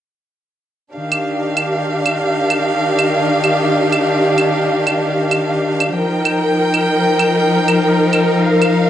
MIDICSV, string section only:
0, 0, Header, 1, 2, 480
1, 0, Start_track
1, 0, Key_signature, -3, "major"
1, 0, Tempo, 625000
1, 723, Time_signature, 4, 2, 24, 8
1, 6834, End_track
2, 0, Start_track
2, 0, Title_t, "String section"
2, 0, Program_c, 0, 48
2, 723, Note_on_c, 0, 67, 62
2, 725, Note_on_c, 0, 51, 70
2, 725, Note_on_c, 0, 62, 61
2, 725, Note_on_c, 0, 77, 73
2, 4532, Note_off_c, 0, 67, 0
2, 4533, Note_off_c, 0, 51, 0
2, 4534, Note_off_c, 0, 62, 0
2, 4534, Note_off_c, 0, 77, 0
2, 4556, Note_on_c, 0, 70, 64
2, 4559, Note_on_c, 0, 63, 64
2, 4560, Note_on_c, 0, 79, 73
2, 4562, Note_on_c, 0, 53, 68
2, 6463, Note_off_c, 0, 79, 0
2, 6479, Note_on_c, 0, 77, 80
2, 6834, Note_off_c, 0, 53, 0
2, 6834, Note_off_c, 0, 63, 0
2, 6834, Note_off_c, 0, 70, 0
2, 6834, Note_off_c, 0, 77, 0
2, 6834, End_track
0, 0, End_of_file